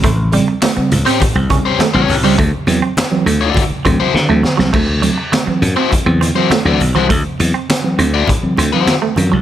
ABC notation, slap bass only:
X:1
M:4/4
L:1/16
Q:1/4=102
K:D
V:1 name="Slap bass" clef=bass
A,,,3 z3 C,, z2 ^B,,,2 z2 A,,, B,,, C,, | D,, z E,, z3 D,,2 z2 D,, z D, D,, z =C,, | D,,3 z3 F,, z2 E,,2 z2 D,, B,,, =C,, | D,, z E,, z3 D,,2 z2 D,, z3 F,, =C,, |]